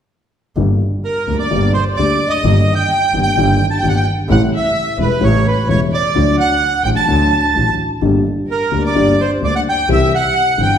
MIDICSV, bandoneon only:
0, 0, Header, 1, 2, 480
1, 0, Start_track
1, 0, Key_signature, -2, "minor"
1, 0, Tempo, 465839
1, 589, Time_signature, 4, 2, 24, 8
1, 11110, End_track
2, 0, Start_track
2, 0, Title_t, "Bandoneon"
2, 0, Program_c, 0, 23
2, 1079, Note_on_c, 0, 70, 56
2, 1412, Note_off_c, 0, 70, 0
2, 1437, Note_on_c, 0, 74, 56
2, 1772, Note_off_c, 0, 74, 0
2, 1790, Note_on_c, 0, 72, 64
2, 1899, Note_off_c, 0, 72, 0
2, 2023, Note_on_c, 0, 74, 78
2, 2369, Note_on_c, 0, 75, 66
2, 2401, Note_off_c, 0, 74, 0
2, 2828, Note_off_c, 0, 75, 0
2, 2836, Note_on_c, 0, 79, 84
2, 3301, Note_off_c, 0, 79, 0
2, 3328, Note_on_c, 0, 79, 67
2, 3771, Note_off_c, 0, 79, 0
2, 3817, Note_on_c, 0, 81, 56
2, 3906, Note_on_c, 0, 79, 59
2, 3911, Note_off_c, 0, 81, 0
2, 4002, Note_off_c, 0, 79, 0
2, 4009, Note_on_c, 0, 78, 67
2, 4092, Note_on_c, 0, 79, 56
2, 4100, Note_off_c, 0, 78, 0
2, 4188, Note_off_c, 0, 79, 0
2, 4449, Note_on_c, 0, 78, 67
2, 4552, Note_off_c, 0, 78, 0
2, 4705, Note_on_c, 0, 76, 72
2, 5131, Note_off_c, 0, 76, 0
2, 5167, Note_on_c, 0, 71, 62
2, 5400, Note_on_c, 0, 73, 72
2, 5401, Note_off_c, 0, 71, 0
2, 5636, Note_off_c, 0, 73, 0
2, 5645, Note_on_c, 0, 71, 56
2, 5855, Note_off_c, 0, 71, 0
2, 5873, Note_on_c, 0, 73, 75
2, 5977, Note_off_c, 0, 73, 0
2, 6123, Note_on_c, 0, 74, 73
2, 6556, Note_off_c, 0, 74, 0
2, 6598, Note_on_c, 0, 78, 77
2, 7034, Note_off_c, 0, 78, 0
2, 7055, Note_on_c, 0, 79, 74
2, 7109, Note_off_c, 0, 79, 0
2, 7172, Note_on_c, 0, 81, 62
2, 7981, Note_off_c, 0, 81, 0
2, 8772, Note_on_c, 0, 70, 60
2, 9097, Note_off_c, 0, 70, 0
2, 9132, Note_on_c, 0, 74, 68
2, 9488, Note_on_c, 0, 72, 54
2, 9492, Note_off_c, 0, 74, 0
2, 9592, Note_off_c, 0, 72, 0
2, 9733, Note_on_c, 0, 74, 70
2, 9833, Note_off_c, 0, 74, 0
2, 9845, Note_on_c, 0, 78, 74
2, 9895, Note_off_c, 0, 78, 0
2, 9986, Note_on_c, 0, 79, 77
2, 10191, Note_off_c, 0, 79, 0
2, 10230, Note_on_c, 0, 76, 76
2, 10433, Note_off_c, 0, 76, 0
2, 10459, Note_on_c, 0, 78, 77
2, 10936, Note_off_c, 0, 78, 0
2, 10948, Note_on_c, 0, 79, 76
2, 11110, Note_off_c, 0, 79, 0
2, 11110, End_track
0, 0, End_of_file